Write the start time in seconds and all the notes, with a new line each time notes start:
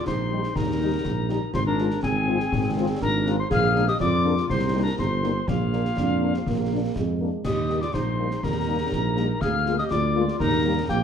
0.06 A#1 D#4 C5 C6, concert bass drum, snare
0.32 G3 D#4 G4
0.43 snare
0.56 D#2 D#4 A#4 A#5, concert bass drum, snare
0.81 G3 D#4 G4
1.05 A#1, concert bass drum, snare
1.29 G3 D#4 G4, snare
1.54 G#1 F4 C5 C6, concert bass drum, snare
1.66 D4 A#4 A#5
1.78 G#3 C4 F4, snare
1.90 snare
2.02 G#1 C4 G#4 G#5, concert bass drum, snare
2.28 G#3 C4 F4
2.40 snare
2.52 G#1, concert bass drum, snare
2.77 G#3 C4 F4
3.01 G#1 D4 A#4 A#5, concert bass drum, snare
3.26 G#3 C4 F4, snare
3.38 D#4 C5 C6
3.51 A#1 G#4 F5 F6, concert bass drum, snare, crash
3.75 G#3 A#3 D4, snare
3.88 G4 D#5 D#6, snare
4.00 F2 F4 D5 D6, concert bass drum, snare
4.25 G#3 A#3 D4
4.37 snare
4.49 C2 D#4 C5 C6, concert bass drum, snare
4.74 G3 A#3 D#4
4.83 D4 A#4 A#5
4.98 G1 D#4 C5 C6, concert bass drum, snare
5.23 G3 A#3 D#4, snare
5.47 A#1 A#3 F4 F5, concert bass drum, snare
5.73 A#3 D4, snare
5.85 snare
5.97 F2 D4, concert bass drum, snare
6.22 A#3 D4
6.34 C4, snare
6.46 A#1 A#3, concert bass drum, snare
6.71 A#3 D4
6.95 F2 G#3, concert bass drum, snare
7.20 A#3 D4
7.45 D#2 G4 D#5 D#6, concert bass drum, snare, crash
7.69 G3 A#3 D#4, snare
7.81 F4 D5 D6, snare
7.94 A#1 D#4 C5 C6, concert bass drum, snare
8.18 G3 A#3 D#4
8.31 snare
8.43 D#2 D#4 A#4 A#5, concert bass drum, snare
8.67 G3 A#3 D#4
8.92 A#1, concert bass drum, snare
9.17 G3 A#3 D#4, snare
9.41 D2 G#4 F5 F6, concert bass drum, snare
9.66 G#3 A#3 F4, snare
9.78 G4 D#5 D#6, snare
9.90 D2 F4 D5 D6, concert bass drum, snare
10.16 G#3 A#3 F4
10.28 snare
10.39 D#2 D#4 A#4 A#5, concert bass drum, snare
10.65 G3 A#3 G4
10.89 A#1 A#3 G4 G5, concert bass drum, snare